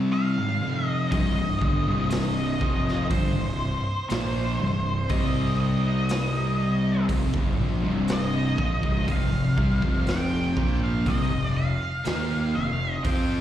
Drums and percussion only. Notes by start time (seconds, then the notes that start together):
1.12 kick, open hi-hat
1.62 kick
2.10 snare, open hi-hat
2.61 kick
2.88 snare
3.10 kick, open hi-hat
4.10 snare, open hi-hat
5.09 kick, open hi-hat
6.09 snare, open hi-hat
7.09 kick, open hi-hat
7.34 kick
8.08 snare, open hi-hat
8.58 kick
8.83 kick
9.08 kick, open hi-hat
9.58 kick
9.82 kick
10.07 snare, open hi-hat
10.57 kick
11.06 kick, open hi-hat
12.05 snare, open hi-hat
13.04 kick, open hi-hat